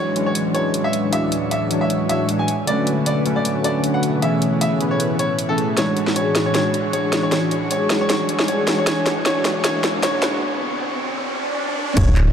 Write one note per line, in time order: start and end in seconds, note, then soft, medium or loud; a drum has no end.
0.00 2.45 D2 medium
0.00 2.45 A2 medium
0.00 0.13 E3 medium
0.00 0.14 E3 medium
0.00 0.14 F#3 medium
0.00 0.14 G#3 medium
0.00 2.45 G#3 medium
0.00 0.14 D4 medium
0.00 2.45 E4 medium
0.00 0.14 F#4 medium
0.00 2.45 F#4 medium
0.00 0.12 C#5 medium
0.00 0.14 C#5 medium
0.00 0.15 C#5 medium
0.00 4.18 E5 medium
0.15 0.33 E3 medium
0.15 1.11 E3 medium
0.15 0.33 F#3 medium
0.15 1.11 G#3 medium
0.15 0.33 G#3 medium
0.15 0.34 C#4 medium
0.15 1.11 D4 medium
0.15 1.11 F#4 medium
0.15 1.11 C#5 medium
0.15 closed hi-hat medium
0.26 0.41 C#5 medium
0.35 closed hi-hat medium
0.54 0.66 E3 medium
0.54 0.66 F#3 medium
0.54 0.66 G#3 medium
0.54 0.67 D4 medium
0.54 0.70 C#5 medium
0.54 closed hi-hat medium
0.74 closed hi-hat medium
0.84 0.99 E5 medium
0.93 closed hi-hat medium
1.11 1.68 E3 medium
1.11 1.69 E3 medium
1.11 1.68 F#3 medium
1.11 1.69 G#3 medium
1.11 1.69 D4 medium
1.11 1.69 F#4 medium
1.11 1.69 D5 medium
1.11 1.33 E5 medium
1.11 closed hi-hat medium
1.32 closed hi-hat medium
1.51 1.67 E5 medium
1.51 closed hi-hat medium
1.69 2.46 E3 medium
1.69 2.07 E3 medium
1.69 2.47 F#3 medium
1.69 2.07 G#3 medium
1.69 2.48 G#3 medium
1.69 2.07 D4 medium
1.69 2.48 D4 medium
1.69 2.07 F#4 medium
1.69 2.07 C#5 medium
1.69 closed hi-hat medium
1.81 1.96 E5 medium
1.90 closed hi-hat medium
2.09 2.47 E3 medium
2.09 2.47 G#3 medium
2.09 2.47 D4 medium
2.09 2.47 F#4 medium
2.09 2.47 C#5 loud
2.09 2.25 E5 medium
2.09 closed hi-hat medium
2.29 closed hi-hat medium
2.39 2.54 G#5 medium
2.48 4.21 B2 medium
2.48 4.21 D3 medium
2.48 4.21 A3 medium
2.48 closed hi-hat medium
2.65 3.23 D3 medium
2.65 3.24 D3 medium
2.65 3.23 F#3 medium
2.65 3.24 A3 medium
2.65 3.24 C#4 medium
2.65 3.25 C#4 loud
2.65 3.24 F#4 medium
2.65 3.24 B4 loud
2.65 2.88 D5 loud
2.65 closed hi-hat medium
2.87 closed hi-hat medium
3.06 3.22 D5 medium
3.06 closed hi-hat medium
3.25 3.42 D3 medium
3.25 4.20 D3 medium
3.25 3.43 F#3 medium
3.25 4.20 A3 medium
3.25 3.43 A3 medium
3.25 4.20 C#4 medium
3.25 3.43 C#4 medium
3.25 4.20 F#4 medium
3.25 4.20 B4 medium
3.25 closed hi-hat medium
3.36 3.51 D5 medium
3.45 closed hi-hat medium
3.63 3.75 D3 medium
3.63 3.75 F#3 medium
3.63 3.76 A3 medium
3.63 3.76 D4 loud
3.63 3.80 D5 medium
3.63 closed hi-hat medium
3.84 closed hi-hat medium
3.94 4.09 F#5 medium
4.03 closed hi-hat medium
4.20 8.64 A2 medium
4.20 4.77 E3 medium
4.20 4.78 E3 medium
4.20 4.78 A3 medium
4.20 4.79 B3 medium
4.20 4.78 C#4 medium
4.20 5.76 C#4 medium
4.20 4.78 G#4 medium
4.20 8.64 G#4 medium
4.20 5.76 B4 medium
4.20 4.78 C#5 medium
4.20 4.43 E5 medium
4.20 closed hi-hat medium
4.24 4.79 C#4 loud
4.42 closed hi-hat medium
4.61 4.77 E5 medium
4.61 closed hi-hat medium
4.79 5.74 E3 medium
4.79 5.17 E3 medium
4.79 5.17 A3 medium
4.79 5.76 B3 medium
4.79 5.17 C#4 medium
4.79 5.76 E4 medium
4.79 5.75 G#4 medium
4.79 5.17 G#4 medium
4.79 5.17 B4 medium
4.79 closed hi-hat medium
4.91 5.06 C#5 medium
5.00 closed hi-hat medium
5.19 5.35 C#5 medium
5.19 closed hi-hat medium
5.39 closed hi-hat medium
5.49 5.75 E3 medium
5.49 5.75 A3 medium
5.49 5.75 C#4 medium
5.49 5.75 G#4 medium
5.49 5.64 A4 medium
5.49 5.75 E5 medium
5.58 closed hi-hat medium
5.77 8.65 D2 medium
5.77 6.33 E3 medium
5.77 6.33 G#3 medium
5.77 5.94 C#4 medium
5.77 6.33 D4 medium
5.77 8.65 E4 medium
5.77 8.65 F#4 medium
5.77 6.33 F#4 medium
5.77 8.65 C#5 medium
5.77 6.33 C#5 medium
5.77 5.98 C#5 medium
5.77 snare soft
5.77 closed hi-hat medium
5.77 riser medium
5.88 6.45 D4 medium
5.97 6.35 E4 loud
5.97 closed hi-hat medium
6.07 6.26 F#4 medium
6.07 snare soft
6.16 6.93 G#4 medium
6.16 6.32 C#5 medium
6.16 closed hi-hat medium
6.27 6.84 F#4 medium
6.35 6.53 E3 medium
6.35 6.53 G#3 medium
6.35 6.53 D4 medium
6.35 6.53 F#4 medium
6.35 6.53 C#5 medium
6.35 snare medium
6.35 closed hi-hat medium
6.46 6.61 D4 medium
6.46 6.53 C#5 medium
6.55 7.11 E3 medium
6.55 7.11 G#3 medium
6.55 6.71 C#4 medium
6.55 7.11 D4 medium
6.55 7.11 F#4 medium
6.55 6.75 C#5 medium
6.55 7.11 C#5 medium
6.55 snare medium
6.55 closed hi-hat medium
6.65 7.23 D4 medium
6.74 7.12 E4 loud
6.74 closed hi-hat medium
6.85 7.03 F#4 medium
6.93 7.71 G#4 medium
6.93 7.09 C#5 medium
6.93 closed hi-hat medium
7.04 7.62 F#4 medium
7.13 7.31 E3 medium
7.13 7.31 G#3 medium
7.13 7.31 D4 medium
7.13 7.51 E4 medium
7.13 7.31 F#4 medium
7.13 7.31 C#5 medium
7.13 snare medium
7.13 closed hi-hat medium
7.23 7.38 D4 medium
7.23 7.31 C#5 medium
7.32 7.88 E3 medium
7.32 7.88 G#3 medium
7.32 7.49 C#4 medium
7.32 7.88 D4 medium
7.32 7.88 F#4 medium
7.32 7.88 C#5 medium
7.32 7.53 C#5 medium
7.32 snare medium
7.32 closed hi-hat medium
7.43 8.00 D4 medium
7.51 7.90 E4 loud
7.51 closed hi-hat medium
7.62 7.81 F#4 medium
7.71 8.48 G#4 medium
7.71 7.87 C#5 medium
7.71 closed hi-hat medium
7.82 8.39 F#4 medium
7.90 8.08 E3 medium
7.90 8.08 G#3 medium
7.90 8.08 D4 medium
7.90 8.08 F#4 medium
7.90 8.08 C#5 medium
7.90 snare medium
7.90 closed hi-hat medium
8.01 8.16 D4 medium
8.01 8.08 C#5 medium
8.09 8.65 E3 medium
8.09 8.65 G#3 medium
8.09 8.26 C#4 medium
8.09 8.65 D4 medium
8.09 8.65 F#4 medium
8.09 8.65 C#5 medium
8.09 8.30 C#5 loud
8.09 snare medium
8.09 closed hi-hat medium
8.20 8.78 D4 loud
8.29 8.67 E4 loud
8.29 closed hi-hat medium
8.39 8.59 F#4 loud
8.39 snare medium
8.48 10.76 G#4 medium
8.48 8.64 C#5 medium
8.48 closed hi-hat medium
8.59 9.16 F#4 medium
8.67 10.40 B2 medium
8.67 10.40 D3 medium
8.67 8.85 E3 medium
8.67 8.85 G#3 medium
8.67 8.85 D4 medium
8.67 9.06 E4 medium
8.67 8.85 F#4 medium
8.67 8.86 C#5 medium
8.67 10.40 C#5 medium
8.67 snare medium
8.67 closed hi-hat medium
8.78 8.93 D4 medium
8.78 8.85 C#5 medium
8.87 9.24 E3 medium
8.87 9.24 G#3 medium
8.87 9.04 C#4 medium
8.87 9.24 D4 medium
8.87 9.24 F#4 medium
8.87 9.24 C#5 medium
8.87 9.07 C#5 loud
8.87 snare medium
8.87 closed hi-hat medium
8.98 9.32 D4 medium
9.06 9.45 E4 loud
9.06 snare medium
9.06 closed hi-hat medium
9.17 9.55 F#4 loud
9.26 9.63 E3 medium
9.26 9.63 G#3 medium
9.26 9.42 C#4 medium
9.26 9.63 D4 medium
9.26 9.63 F#4 medium
9.26 9.63 C#5 loud
9.26 9.46 C#5 loud
9.26 snare medium
9.26 closed hi-hat medium
9.36 9.70 D4 loud
9.45 9.83 E4 loud
9.45 snare medium
9.45 closed hi-hat medium
9.56 9.94 F#4 loud
9.64 10.02 E3 medium
9.64 10.02 G#3 medium
9.64 9.81 C#4 medium
9.64 10.02 D4 medium
9.64 10.02 F#4 medium
9.64 10.02 C#5 medium
9.64 9.85 C#5 loud
9.64 snare medium
9.64 closed hi-hat medium
9.75 10.09 D4 loud
9.84 10.22 E4 loud
9.84 snare medium
9.84 closed hi-hat medium
9.94 10.33 F#4 loud
10.03 10.40 E3 medium
10.03 10.40 G#3 medium
10.03 10.20 C#4 medium
10.03 10.40 D4 medium
10.03 10.40 F#4 medium
10.03 10.40 C#5 loud
10.03 10.24 C#5 medium
10.03 snare medium
10.03 closed hi-hat medium
10.14 12.03 D4 loud
10.22 12.16 E4 loud
10.22 snare medium
10.22 closed hi-hat medium
10.33 12.26 F#4 loud
10.42 11.95 A2 medium
10.42 11.95 G#3 medium
10.42 11.95 C#4 medium
10.42 11.95 B4 medium
11.19 swell medium
11.69 high tom medium
11.77 mid tom medium
11.88 mid tom medium
11.97 12.33 D1 loud
11.97 12.33 E3 medium
11.97 12.33 G#3 medium
11.97 12.33 D4 medium
11.97 12.33 F#4 medium
11.97 12.17 C#5 loud
11.97 12.33 C#5 medium
11.97 kick loud
11.97 closed hi-hat medium
11.97 crash loud
11.97 sub drop medium
12.07 12.33 D4 loud
12.16 12.33 E4 loud
12.16 clap medium
12.16 closed hi-hat medium
12.27 12.33 F#4 loud